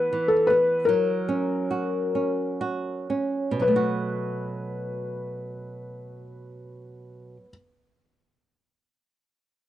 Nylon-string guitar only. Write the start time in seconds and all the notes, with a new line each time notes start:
Already playing: E3 B3
0.13 E3
0.50 B3
0.89 F#3
1.29 C#4
1.71 F#4
2.15 C#4
2.61 F#4
3.10 C#4
3.51 B2
3.60 F#3
3.68 A3
3.76 F#4